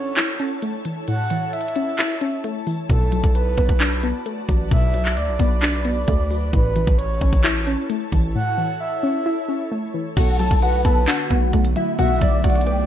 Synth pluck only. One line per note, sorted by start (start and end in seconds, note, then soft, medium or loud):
0.00 0.40 A2 medium
0.00 0.62 E3 medium
0.00 0.39 C#4 medium
0.17 1.31 E4 loud
0.40 1.53 C#4 medium
0.62 1.76 A3 medium
0.85 1.29 E3 medium
1.08 2.21 A2 loud
1.31 2.44 E3 medium
1.76 2.20 C#4 medium
1.99 2.90 E4 loud
2.21 2.90 C#4 medium
2.44 2.90 A3 medium
2.67 2.90 E3 medium
2.90 4.03 B2 loud
3.12 4.26 F#3 medium
3.58 4.02 B3 medium
3.80 4.94 D4 loud
4.03 5.17 B3 medium
4.26 5.40 A3 medium
4.49 4.93 F#3 medium
4.71 5.85 B2 loud
4.94 6.08 F#3 medium
5.40 5.84 B3 medium
5.62 6.53 D4 loud
5.85 6.53 B3 medium
6.08 6.53 A3 medium
6.31 6.53 F#3 medium
6.53 7.67 A2 loud
6.76 7.90 E3 medium
7.21 7.66 C#4 medium
7.44 8.58 E4 loud
7.67 8.81 C#4 medium
7.90 9.03 A3 medium
8.12 8.57 E3 medium
8.35 9.49 A2 medium
8.58 9.71 E3 medium
9.03 9.47 C#4 medium
9.26 10.17 E4 loud
9.49 10.17 C#4 medium
9.72 10.17 A3 medium
9.94 10.17 E3 medium
10.17 11.31 B2 loud
10.40 11.53 F#3 medium
10.85 11.29 B3 medium
11.08 12.21 D4 loud
11.31 12.44 B3 medium
11.53 12.67 A3 medium
11.76 12.20 F#3 medium
11.99 12.86 B2 loud
12.22 12.86 F#3 medium
12.67 12.86 B3 medium